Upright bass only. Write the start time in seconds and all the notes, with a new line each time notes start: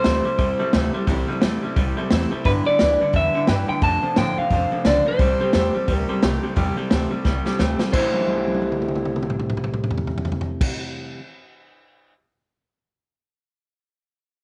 0.05 D2
0.39 E2
0.74 D2
1.07 C2
1.43 E2
1.64 muted upright bass stroke
1.77 C2
2.12 E2
2.46 G2
2.67 muted upright bass stroke
2.81 D2
3.14 E2
3.48 G2
3.69 muted upright bass stroke
3.82 F2
4.17 A2
4.38 muted upright bass stroke
4.51 F2
4.72 muted upright bass stroke
4.85 C#2
5.20 C2
5.40 muted upright bass stroke
5.54 E2
5.88 D2
6.10 muted upright bass stroke
6.23 C2
6.57 E2
6.92 D2
7.25 C2
7.59 D2
7.93 C2